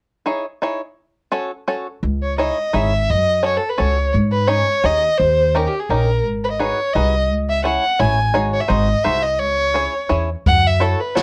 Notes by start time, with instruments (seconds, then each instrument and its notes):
0.26 five-string banjo D#4 E4 G#4 C#5
0.62 five-string banjo D#4 E4 G#4 C#5
1.32 five-string banjo C#4 F#4 A4 C#5
1.68 five-string banjo C#4 F#4 A4 C#5
2.03 upright bass C#2
2.22 violin C#5
2.38 five-string banjo D#4 E4 G#4 C#5, violin D#5
2.73 upright bass G#1, five-string banjo D#4 E4 G#4 C#5, violin E5
3.10 upright bass F#2, violin D#5
3.43 five-string banjo C#4 F#4 A4 C#5, violin C#5
3.57 violin A4
3.70 violin B4
3.78 upright bass C#2, five-string banjo C#4 F#4 A4 C#5, violin C#5
4.14 upright bass G#2
4.32 violin B4
4.48 five-string banjo C#4 D#4 G#4 C#5, violin C#5
4.84 upright bass D#2, five-string banjo C#4 D#4 G#4 C#5, violin D#5
5.18 upright bass D#2, violin C5
5.55 five-string banjo C#4 D#4 G4 A#4, violin A#4
5.67 violin G4
5.80 violin G#4
5.89 upright bass A#1, five-string banjo C#4 D#4 G4 A#4, violin A#4
6.25 upright bass G#1
6.44 violin B4
6.51 violin D#5
6.59 five-string banjo D#4 F#4 G#4 B4, violin C#5
6.94 upright bass C2, five-string banjo D#4 F#4 G#4 B4, violin D#5
7.31 upright bass C#2
7.50 violin E5
7.64 five-string banjo C#4 E4 G#4 C#5, violin F#5
7.99 upright bass A1, five-string banjo C#4 E4 G#4 C#5, violin G#5
8.34 upright bass G#1, five-string banjo D#4 F#4 G#4 C#5
8.54 violin C#5
8.61 violin E5
8.68 upright bass G#1, five-string banjo D#4 F#4 G#4 C5, violin D#5
9.04 upright bass C2, five-string banjo D#4 F#4 G#4 C5, violin E5
9.23 violin D#5
9.39 upright bass C#2, violin C#5
9.74 five-string banjo C#4 E4 G#4 C#5
10.09 upright bass E2, five-string banjo C#4 E4 G#4 C#5
10.46 upright bass F#2, violin F#5, kick, closed hi-hat
10.67 violin E5
10.80 five-string banjo E4 F#4 A4 C#5, violin A4, closed hi-hat
11.00 violin B4
11.15 five-string banjo E4 F#4 A4 C#5, violin C#5, snare, closed hi-hat